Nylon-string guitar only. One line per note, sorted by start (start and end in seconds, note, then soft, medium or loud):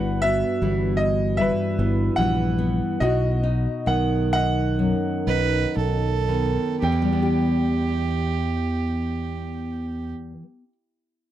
0.00 1.37 G2 medium
0.00 0.61 G3 medium
0.00 2.96 F#4 medium
0.23 1.79 B3 medium
0.62 2.16 E3 medium
0.62 2.17 G3 medium
1.38 2.96 G2 medium
1.79 2.58 B3 medium
2.17 2.96 E3 medium
2.17 3.01 G3 medium
2.59 3.43 B3 medium
3.01 3.88 B2 medium
3.01 6.77 F#4 medium
3.43 5.27 D#4 medium
3.86 6.27 D#3 medium
3.86 6.76 B3 medium
4.79 6.76 F#2 medium
5.28 6.77 D#4 medium
6.28 6.83 D#3 medium
6.82 10.32 E2 medium
6.92 10.42 E3 medium
7.02 10.52 G3 medium
7.12 10.62 B3 medium
7.22 10.72 G4 medium